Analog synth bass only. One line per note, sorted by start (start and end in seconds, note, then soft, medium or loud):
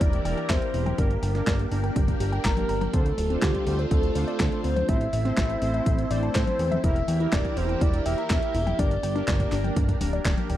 0.01 0.20 E1 loud
0.25 0.35 E1 medium
0.50 0.59 E1 loud
0.74 0.93 E1 loud
0.98 1.18 G1 medium
1.23 1.42 G1 loud
1.47 1.66 G1 loud
1.71 1.91 G1 medium
1.96 2.15 G1 medium
2.20 2.40 G1 medium
2.45 2.64 G1 medium
2.69 2.88 G1 medium
2.94 3.13 D2 loud
3.18 3.37 D1 medium
3.42 3.52 D2 loud
3.67 3.86 D2 loud
3.91 4.10 D2 loud
4.16 4.25 D2 medium
4.40 4.50 D2 loud
4.64 4.84 D2 medium
4.89 5.08 A1 medium
5.13 5.32 A1 medium
5.37 5.57 A1 loud
5.62 5.81 A1 medium
5.86 6.06 A1 medium
6.11 6.30 A1 medium
6.35 6.45 A2 loud
6.59 6.79 E2 medium
6.84 7.03 E1 loud
7.08 7.28 E2 medium
7.33 7.42 E1 loud
7.57 7.76 E1 loud
7.81 8.01 E1 loud
8.06 8.15 E1 medium
8.30 8.40 E1 loud
8.54 8.74 E1 medium
8.79 8.98 G1 loud
9.03 9.23 G1 medium
9.28 9.47 G1 loud
9.52 9.71 G1 medium
9.76 9.96 G1 medium
10.01 10.20 D1 medium
10.25 10.35 D1 loud
10.50 10.57 D1 medium